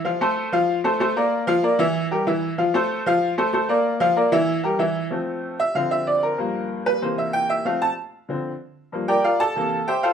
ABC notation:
X:1
M:4/4
L:1/8
Q:1/4=189
K:F
V:1 name="Upright piano"
[F,Ff] [A,Ac]2 [F,Ff]2 [A,Ac] [A,Ac] [B,Bd]- | [B,Bd] [F,Ff] [B,Bd] [E,Ee]2 [G,GB] [E,Ee]2 | [F,Ff] [A,Ac]2 [F,Ff]2 [A,Ac] [A,Ac] [B,Bd]- | [B,Bd] [F,Ff] [B,Bd] [E,Ee]2 [G,GB] [E,Ee]2 |
z3 e f e d B- | B2 z =B c e g e | f a z6 | z [GBdg] [FBdf] [Aa]3 [Gceg] [FAcf] |]
V:2 name="Upright piano" clef=bass
z8 | z8 | z8 | z8 |
[F,A,C]3 z [D,F,C]4 | [G,,F,B,]4 [C,E,B,]4 | [F,A,C] z3 [D,F,C] z3 | [G,,F,B,] z3 [C,E,B,] z3 |]